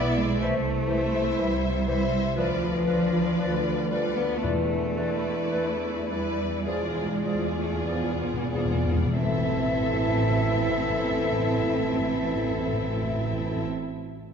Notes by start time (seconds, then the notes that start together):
Already playing: B1 B3 E4 B4 D5 E5
0.19 G#3
0.40 C2 E3 A3 E4 C5 E5
0.87 E3 E4 C5 E5
1.38 C2 E3 G3 C5 E5
1.87 E3 E4 C5 E5
1.91 E5
2.36 D2 F3 D4 F4 B4 D5
2.87 F3 F4 B4 D5
3.39 D2 F3 B4 D5
3.89 F3 G3 F4 B4 D5
3.93 D5
4.17 B3
4.43 E2 E3 A3 B4 D5
4.95 E3 E4 B4 D5
5.51 E2 E3 B4 D5
6.08 E3 G3 E4 B4 D5
6.66 E2 F3 G#3 F4 G#4 D5
6.77 E2
6.86 E2
6.96 E2
7.05 E2
7.15 E2
7.24 E2 F3 F4 G#4 D5
7.34 E2
7.43 E2
7.53 E2
7.58 A3
7.63 E2
7.73 E2
7.83 E2 D5
7.88 E2 F3 B3 G#4
7.93 E2
8.03 E2
8.13 E2
8.24 E2
8.33 E2
8.44 E2
8.52 E2 F4 G#4 D5
8.56 F3 D5
8.65 E2
8.74 E2
8.85 E2
8.95 E2
9.05 E2
9.17 A1 A2 E3 C4 E4 A4 E5
9.26 A2
9.34 A2
9.42 A2
9.49 A2
9.57 A2
9.64 A2
9.72 A2
9.79 A2
9.87 A2
9.94 A2
10.02 A2
10.09 A2
10.16 A2
10.23 A2
10.31 A2
10.38 A2
10.46 A2
10.53 A2
10.68 A2
10.75 A2
10.82 A2
10.90 A2
10.96 A2
11.03 A2
11.11 A2
11.17 A2
11.25 A2
11.32 A2
11.39 A2
11.47 A2
11.54 A2
11.61 A2
11.69 A2
11.77 A2
11.84 A2
11.91 A2
11.99 A2
12.07 A2
12.14 A2
12.22 A2
12.29 A2
12.35 A2
12.43 A2
12.50 A2
12.58 A2
12.65 A2
12.73 A2
12.81 A2
12.88 A2
12.95 A2
13.03 A2
13.10 A2
13.17 A2
13.25 A2
13.32 A2
13.40 A2
13.47 A2
13.55 A2